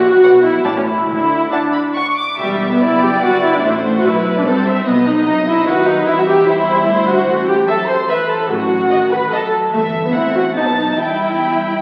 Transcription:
0.00 0.16 A#1 medium
0.00 0.16 A#2 medium
0.00 0.44 F#4 medium
0.22 0.57 B1 medium
0.22 0.57 B2 medium
0.22 0.32 B4 medium
0.22 0.32 D5 soft
0.22 0.32 F#5 soft
0.43 0.64 E4 medium
0.63 1.00 A1 medium
0.63 1.00 A2 soft
0.63 0.69 D4 medium
0.63 0.73 C#5 soft
0.63 0.73 G5 soft
0.63 0.73 A5 soft
0.76 0.80 C#4 medium
0.86 1.07 E4 soft
1.07 1.44 D2 soft
1.07 1.44 D3 soft
1.07 1.51 E4 medium
1.52 1.95 D4 soft
1.52 1.60 D5 soft
1.52 1.60 F#5 soft
1.52 1.60 A5 soft
1.73 1.81 B5 soft
1.95 2.03 D5 soft
1.95 2.04 F#5 soft
1.95 2.17 C#6 medium
2.17 2.39 D6 soft
2.39 2.78 E1 soft
2.39 2.69 G3 medium
2.39 3.60 B3 medium
2.39 2.69 G4 soft
2.39 2.79 E5 soft
2.72 2.82 B3 soft
2.72 2.82 B4 soft
2.82 3.22 F#1 soft
2.82 3.03 E4 medium
2.82 3.64 D5 soft
2.82 3.02 E5 medium
3.03 3.11 G4 medium
3.03 3.23 G5 medium
3.23 3.63 G1 soft
3.23 3.43 F#4 medium
3.23 3.44 F#5 medium
3.43 3.54 E4 medium
3.43 3.53 E5 medium
3.54 3.65 D4 medium
3.54 3.58 D5 soft
3.64 4.04 A1 medium
3.64 4.46 A3 medium
3.64 3.72 E4 medium
3.64 4.05 C5 soft
3.64 3.72 E5 medium
3.94 4.06 F#4 medium
3.94 4.05 F#5 medium
4.04 4.45 B1 soft
4.04 4.37 E4 medium
4.04 4.46 B4 soft
4.04 4.35 E5 medium
4.36 4.42 D4 medium
4.36 4.46 D5 soft
4.45 4.87 C2 soft
4.45 4.86 G3 medium
4.45 4.86 C4 medium
4.45 4.67 A4 medium
4.45 4.86 C5 medium
4.67 4.87 E5 soft
4.86 5.27 B1 medium
4.86 6.06 F#3 medium
4.86 5.07 B3 medium
4.86 5.07 B4 medium
4.86 5.25 D#5 soft
5.06 5.26 D#4 medium
5.06 5.25 D#5 medium
5.26 5.68 C2 medium
5.26 5.35 D#4 medium
5.26 5.66 D#5 soft
5.26 5.47 D#5 medium
5.47 5.67 E4 medium
5.47 5.68 E5 medium
5.67 6.07 D#2 medium
5.67 5.88 F#4 medium
5.67 6.08 B4 soft
5.67 5.88 F#5 medium
5.87 6.08 D#4 medium
5.87 6.08 D#5 medium
6.07 6.47 C2 medium
6.07 6.47 E3 soft
6.07 6.18 E4 medium
6.07 6.48 E5 soft
6.07 6.13 E5 medium
6.18 6.28 F#4 medium
6.18 6.22 F#5 medium
6.28 6.47 G4 medium
6.28 6.48 G5 medium
6.47 6.87 E2 medium
6.47 7.28 G3 medium
6.47 7.06 E4 medium
6.47 6.86 C5 soft
6.47 7.08 E5 medium
6.87 7.27 D2 medium
6.87 7.27 C5 medium
7.08 7.48 F#4 medium
7.08 7.48 F#5 medium
7.27 7.61 A1 medium
7.27 7.67 A3 soft
7.47 7.56 G4 medium
7.47 7.67 G5 medium
7.68 8.08 F#3 soft
7.68 7.88 A4 medium
7.68 7.76 E5 soft
7.68 7.88 A5 medium
7.88 7.97 C5 medium
7.88 8.09 C6 medium
8.08 8.50 E3 soft
8.08 8.29 B4 medium
8.08 8.18 E5 soft
8.08 8.16 B5 medium
8.29 8.50 A4 medium
8.29 8.37 A5 medium
8.49 8.83 A1 medium
8.49 8.90 F#3 soft
8.49 9.12 F#4 medium
8.49 9.10 F#5 medium
8.90 9.31 D#3 soft
8.90 8.99 D#5 soft
9.11 9.32 B4 medium
9.11 9.32 B5 medium
9.32 9.72 F#3 soft
9.32 9.52 A4 medium
9.32 9.40 D#5 soft
9.32 9.52 A5 medium
9.73 10.11 G1 soft
9.73 10.14 E3 soft
9.73 9.82 A3 medium
9.73 10.02 A4 medium
9.73 10.12 E5 soft
10.05 10.14 B3 soft
10.05 10.09 B4 soft
10.13 10.56 A1 soft
10.13 10.55 C4 soft
10.13 10.35 E4 medium
10.13 10.35 E5 medium
10.13 10.56 F#5 soft
10.35 10.43 F#4 medium
10.35 10.57 F#5 soft
10.55 10.99 B1 soft
10.55 10.98 B3 soft
10.55 10.60 D#4 medium
10.55 10.67 D#5 soft
10.55 10.98 A5 soft
10.67 10.72 B3 soft
10.67 10.78 B4 soft
10.77 10.98 D#4 soft
10.77 10.99 D#5 soft
10.99 11.82 E2 soft
10.99 11.82 G3 soft
10.99 11.82 E4 medium
10.99 11.82 E5 soft
10.99 11.82 G5 soft

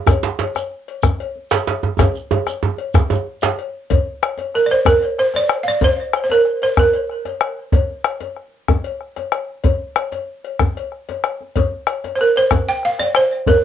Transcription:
0.07 bombo rim medium
0.07 bombo low medium
0.07 cowbell medium
0.07 djembe slap medium
0.07 djembe tone medium
0.07 djembe bass medium
0.07 shekere medium
0.23 djembe slap medium
0.39 cowbell soft
0.39 djembe slap medium
0.55 bombo rim medium
0.55 cowbell soft
0.55 djembe slap medium
0.55 shekere soft
0.88 cowbell soft
1.03 bombo rim medium
1.03 bombo low medium
1.03 djembe slap medium
1.03 djembe tone medium
1.03 djembe bass medium
1.03 shekere medium
1.20 cowbell soft
1.36 djembe slap soft
1.51 bombo rim medium
1.51 cowbell soft
1.51 djembe slap loud
1.51 djembe slap medium
1.51 shekere soft
1.67 cowbell soft
1.67 djembe slap medium
1.67 djembe slap soft
1.83 djembe tone medium
1.99 bombo rim medium
1.99 bombo low medium
1.99 cowbell medium
1.99 djembe slap medium
1.99 djembe tone medium
1.99 djembe tone loud
1.99 djembe bass medium
1.99 shekere medium
2.15 djembe slap soft
2.15 shekere soft
2.31 bombo rim soft
2.31 cowbell soft
2.31 djembe tone loud
2.47 bombo rim medium
2.47 cowbell soft
2.47 djembe slap medium
2.47 shekere soft
2.63 djembe slap soft
2.63 djembe tone medium
2.78 cowbell soft
2.78 djembe slap soft
2.94 bombo rim medium
2.94 bombo low medium
2.94 djembe slap medium
2.94 djembe tone medium
2.94 djembe bass medium
2.94 shekere medium
3.10 cowbell soft
3.10 djembe tone loud
3.10 shekere soft
3.42 bombo rim medium
3.42 cowbell soft
3.42 djembe slap medium
3.42 djembe slap loud
3.42 shekere soft
3.59 cowbell soft
3.90 bombo low loud
3.90 cowbell medium
3.90 djembe slap medium
3.90 djembe tone medium
3.90 djembe bass medium
4.06 djembe slap soft
4.23 bombo rim loud
4.23 cowbell medium
4.37 cowbell soft
4.37 djembe slap soft
4.54 4.67 A#4 medium
4.54 bombo rim soft
4.66 4.70 D5 medium
4.71 4.87 C5 medium
4.71 cowbell soft
4.85 5.19 A#4 medium
4.85 bombo rim loud
4.85 bombo low medium
4.85 djembe slap medium
4.85 djembe tone medium
4.85 djembe bass medium
5.02 cowbell soft
5.18 5.35 C5 medium
5.18 bombo rim soft
5.34 5.64 D5 loud
5.34 bombo rim soft
5.34 cowbell soft
5.34 djembe slap medium
5.49 bombo rim loud
5.49 cowbell soft
5.63 5.66 F5 medium
5.68 5.83 D5 medium
5.81 6.23 C5 medium
5.81 bombo low medium
5.81 cowbell medium
5.81 djembe slap medium
5.81 djembe tone medium
5.81 djembe bass medium
5.98 djembe slap soft
6.13 bombo rim medium
6.13 cowbell soft
6.24 6.30 C5 medium
6.29 6.63 A#4 medium
6.29 cowbell soft
6.29 djembe slap medium
6.45 bombo rim soft
6.62 6.79 C5 medium
6.62 cowbell soft
6.77 7.54 A#4 medium
6.77 bombo rim medium
6.77 bombo low medium
6.77 djembe slap medium
6.77 djembe tone medium
6.77 djembe bass medium
6.93 cowbell soft
7.10 bombo rim soft
7.25 bombo rim soft
7.25 cowbell soft
7.25 djembe slap medium
7.41 bombo rim loud
7.41 cowbell soft
7.72 bombo low loud
7.72 cowbell medium
7.72 djembe slap medium
7.72 djembe tone medium
7.72 djembe bass medium
7.89 djembe slap soft
8.04 bombo rim loud
8.04 cowbell soft
8.21 cowbell soft
8.21 djembe slap medium
8.37 bombo rim soft
8.68 bombo rim medium
8.68 bombo low medium
8.68 djembe slap medium
8.68 djembe tone medium
8.68 djembe bass medium
8.84 cowbell soft
9.01 bombo rim soft
9.16 bombo rim soft
9.16 cowbell soft
9.16 djembe slap soft
9.32 bombo rim medium
9.32 cowbell soft
9.64 bombo low medium
9.64 cowbell medium
9.64 djembe slap medium
9.64 djembe tone medium
9.64 djembe bass medium
9.96 bombo rim medium
9.96 cowbell medium
9.96 djembe slap soft
10.12 cowbell soft
10.12 djembe slap medium
10.45 cowbell soft
10.59 bombo rim medium
10.59 bombo low medium
10.59 djembe slap medium
10.59 djembe tone medium
10.59 djembe bass medium
10.77 cowbell soft
10.77 djembe slap soft
10.92 bombo rim soft
11.09 cowbell medium
11.09 djembe slap medium
11.24 bombo rim medium
11.24 cowbell soft
11.41 djembe slap soft
11.56 bombo low medium
11.56 cowbell medium
11.56 djembe slap medium
11.56 djembe tone medium
11.56 djembe bass medium
11.72 djembe slap soft
11.87 bombo rim medium
11.87 cowbell medium
12.04 cowbell soft
12.04 djembe slap medium
12.15 12.19 C5 medium
12.15 bombo rim soft
12.21 12.36 A#4 medium
12.36 12.69 C5 medium
12.36 cowbell soft
12.51 bombo rim medium
12.51 bombo low medium
12.51 djembe slap medium
12.51 djembe tone medium
12.51 djembe bass medium
12.69 12.84 G5 loud
12.83 13.00 F5 medium
12.83 bombo rim soft
12.99 13.16 D5 medium
12.99 bombo rim soft
12.99 cowbell soft
12.99 djembe slap medium
13.15 13.48 C5 medium
13.15 bombo rim loud
13.15 cowbell soft
13.46 13.64 A#4 medium
13.46 bombo low medium
13.46 cowbell medium
13.46 djembe slap medium
13.46 djembe tone medium
13.46 djembe bass medium

